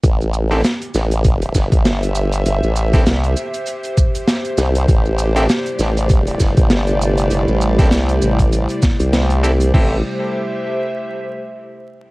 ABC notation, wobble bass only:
X:1
M:4/4
L:1/16
Q:"Swing 16ths" 1/4=99
K:Am
V:1 name="Wobble bass" clef=bass
A,,,4 z2 A,,,4 G,,, A,,, G,,,4 | G,,, A,,,3 C,,2 z8 C,,2 | A,,,4 z2 A,,,4 G,,, A,,, G,,,4 | G,,, A,,,3 C,,2 A,,,3 z2 C,,4- C,, |
A,,,2 z12 z2 |]